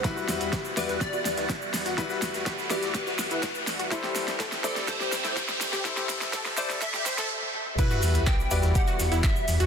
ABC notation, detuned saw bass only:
X:1
M:4/4
L:1/16
Q:1/4=124
K:Em
V:1 name="Detuned saw bass" clef=bass
z2 E,, E,, z2 E,, E,, z2 E,, D,, z2 E,, E,, | z2 E,, E,, z2 E,, E,, z2 E,, D,, z2 E,, E,, | z2 A,,, A,,, z2 A,,, A,,, z2 A,,, G,,, z2 A,,, A,,, | z2 A,,, A,,, z2 A,,, A,,, z2 A,,, G,,, z4 |
z2 E,, E,, z2 E,, E,, z2 E,, E,, z2 E,, E,, |]